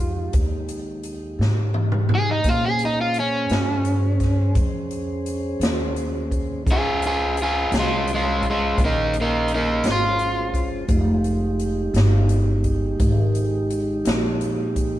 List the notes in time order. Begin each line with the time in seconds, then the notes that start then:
Already playing: F2 G#3 D#4 F4 G4
0.33 D#2, kick, closed hi-hat
0.69 closed hi-hat
1.03 closed hi-hat
1.39 G#2, snare
1.74 high tom
1.92 mid tom
2.09 mid tom
2.15 G#4
2.31 D#4
2.44 A#2 C#4 G#4 C5, kick, closed hi-hat
2.49 F4
2.66 G#4
2.79 closed hi-hat
2.85 D#4
3.01 F4
3.14 closed hi-hat
3.20 C#4
3.49 G2, snare, closed hi-hat
3.85 closed hi-hat
4.20 kick, snare, closed hi-hat
4.55 F2, kick, closed hi-hat
4.91 closed hi-hat
5.26 closed hi-hat
5.60 D#2, snare, closed hi-hat
5.96 closed hi-hat
6.31 kick, closed hi-hat
6.65 C#2 C#4 G#4 C5, kick, closed hi-hat
6.71 F4 G#4
7.02 F4, closed hi-hat
7.07 G#4
7.37 closed hi-hat
7.42 F4 G#4
7.72 C2, snare, closed hi-hat
7.79 G#3 F4
8.08 closed hi-hat
8.14 G#3 F4
8.43 kick, closed hi-hat
8.50 G#3 F4
8.78 A#1, kick, closed hi-hat
8.85 A#3 D#4
9.14 closed hi-hat
9.21 A#3 D#4
9.48 closed hi-hat
9.55 A#3 D#4
9.84 G#1, snare, closed hi-hat
9.92 F4
10.19 closed hi-hat
10.54 kick, closed hi-hat
10.87 F1 G#3 D#4 G4, kick, closed hi-hat
11.24 closed hi-hat
11.60 closed hi-hat
11.94 G1, snare, closed hi-hat
12.29 closed hi-hat
12.64 kick, closed hi-hat
13.00 G#1, kick, closed hi-hat
13.35 closed hi-hat
13.70 closed hi-hat
14.05 A#1, snare, closed hi-hat
14.41 closed hi-hat
14.76 kick, closed hi-hat